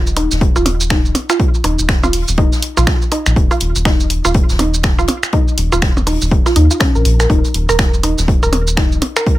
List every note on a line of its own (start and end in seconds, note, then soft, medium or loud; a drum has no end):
0.00 0.27 D#1 medium
0.07 shaker soft
0.16 0.22 D#4 medium
0.16 closed hi-hat medium
0.16 percussion blips soft
0.31 0.50 D#1 medium
0.31 snare soft
0.31 shaker medium
0.41 kick loud
0.41 closed hi-hat medium
0.56 1.12 D#1 loud
0.56 0.60 F4 loud
0.56 percussion blips soft
0.56 shaker soft
0.65 closed hi-hat medium
0.65 percussion blips medium
0.81 shaker medium
0.90 0.96 D#4 medium
0.90 finger snap medium
0.90 kick loud
0.90 snare loud
0.90 closed hi-hat medium
0.90 closed hi-hat soft
0.90 percussion blips soft
1.05 shaker soft
1.15 closed hi-hat medium
1.15 percussion blips medium
1.30 1.34 F4 loud
1.30 finger snap medium
1.30 percussion blips soft
1.30 shaker medium
1.39 kick loud
1.39 closed hi-hat medium
1.54 shaker soft
1.64 1.76 D#1 medium
1.64 1.70 D#4 medium
1.64 closed hi-hat medium
1.64 percussion blips soft
1.79 2.24 D#1 medium
1.79 shaker medium
1.89 finger snap medium
1.89 kick loud
1.89 snare loud
1.89 closed hi-hat medium
2.03 2.07 F4 loud
2.03 percussion blips medium
2.03 percussion blips soft
2.03 shaker soft
2.13 closed hi-hat medium
2.13 open hi-hat medium
2.28 2.47 D#1 medium
2.28 shaker medium
2.37 2.44 D#4 medium
2.37 kick loud
2.37 closed hi-hat medium
2.37 percussion blips soft
2.52 snare soft
2.52 shaker soft
2.62 closed hi-hat medium
2.77 2.85 A#1 medium
2.77 2.81 F4 loud
2.77 percussion blips soft
2.77 shaker medium
2.87 finger snap loud
2.87 kick loud
2.87 snare loud
2.87 closed hi-hat soft
2.87 closed hi-hat medium
3.02 shaker soft
3.12 3.18 D#4 medium
3.12 closed hi-hat medium
3.12 percussion blips soft
3.26 3.34 A#1 medium
3.26 finger snap medium
3.26 shaker medium
3.36 3.48 D#1 medium
3.36 kick loud
3.36 closed hi-hat medium
3.51 3.55 F4 loud
3.51 closed hi-hat soft
3.51 percussion blips soft
3.51 shaker soft
3.60 3.73 D#1 medium
3.60 closed hi-hat medium
3.75 4.20 D#1 medium
3.75 closed hi-hat soft
3.75 shaker soft
3.85 3.91 D#4 medium
3.85 finger snap medium
3.85 kick loud
3.85 snare loud
3.85 closed hi-hat medium
3.85 percussion blips soft
4.00 shaker soft
4.10 closed hi-hat medium
4.25 4.44 D#1 medium
4.25 4.29 F4 loud
4.25 percussion blips soft
4.25 shaker soft
4.34 kick loud
4.34 closed hi-hat medium
4.49 5.05 D#1 medium
4.49 snare soft
4.49 shaker soft
4.59 4.65 D#4 medium
4.59 closed hi-hat medium
4.59 percussion blips medium
4.59 percussion blips soft
4.74 shaker soft
4.83 finger snap medium
4.83 kick loud
4.83 snare loud
4.83 closed hi-hat medium
4.83 closed hi-hat soft
4.99 5.02 F4 loud
4.99 percussion blips soft
4.99 shaker soft
5.07 closed hi-hat medium
5.07 percussion blips medium
5.23 finger snap medium
5.23 shaker medium
5.32 5.39 D#4 medium
5.32 kick loud
5.32 closed hi-hat medium
5.32 percussion blips soft
5.48 shaker soft
5.58 5.70 D#1 loud
5.58 closed hi-hat medium
5.72 6.17 D#1 medium
5.72 5.76 F4 loud
5.72 percussion blips soft
5.72 shaker soft
5.82 finger snap medium
5.82 kick loud
5.82 snare loud
5.82 closed hi-hat loud
5.97 percussion blips medium
5.97 shaker soft
6.07 6.13 D#4 medium
6.07 closed hi-hat medium
6.07 open hi-hat medium
6.07 percussion blips soft
6.22 6.41 D#1 medium
6.22 shaker medium
6.31 kick loud
6.31 closed hi-hat medium
6.45 6.50 F4 medium
6.45 snare soft
6.45 percussion blips soft
6.45 shaker soft
6.56 6.68 D#2 medium
6.56 6.62 D#4 loud
6.56 closed hi-hat medium
6.71 6.73 F4 medium
6.71 shaker soft
6.80 6.84 C#4 medium
6.80 finger snap medium
6.80 kick loud
6.80 snare loud
6.80 closed hi-hat soft
6.80 closed hi-hat medium
6.80 percussion blips soft
6.95 7.03 A#1 medium
6.95 6.98 A#4 medium
6.95 shaker soft
7.05 7.26 A#1 medium
7.05 closed hi-hat medium
7.19 7.24 A#4 medium
7.19 finger snap medium
7.19 snare soft
7.19 percussion blips soft
7.19 shaker soft
7.30 7.42 D#1 loud
7.30 7.36 D#4 medium
7.30 kick loud
7.30 closed hi-hat medium
7.30 percussion blips soft
7.44 closed hi-hat soft
7.44 shaker soft
7.54 7.66 D#1 loud
7.54 closed hi-hat medium
7.69 8.14 D#1 medium
7.69 7.75 A#4 loud
7.69 closed hi-hat soft
7.69 percussion blips soft
7.69 shaker soft
7.78 finger snap medium
7.78 kick loud
7.78 snare loud
7.78 closed hi-hat medium
7.94 shaker soft
8.03 8.09 D#4 medium
8.03 closed hi-hat medium
8.03 percussion blips soft
8.18 8.37 D#1 medium
8.18 snare soft
8.18 shaker soft
8.28 kick loud
8.28 closed hi-hat medium
8.43 8.99 D#1 medium
8.43 8.49 A#4 loud
8.43 percussion blips soft
8.43 shaker soft
8.53 closed hi-hat medium
8.53 percussion blips medium
8.67 shaker soft
8.77 8.83 D#4 medium
8.77 finger snap medium
8.77 kick loud
8.77 snare loud
8.77 closed hi-hat medium
8.77 closed hi-hat soft
8.77 percussion blips soft
8.92 shaker soft
9.02 closed hi-hat medium
9.02 percussion blips medium
9.17 9.22 A#4 loud
9.17 finger snap medium
9.17 percussion blips soft
9.17 shaker soft
9.26 kick loud
9.26 closed hi-hat medium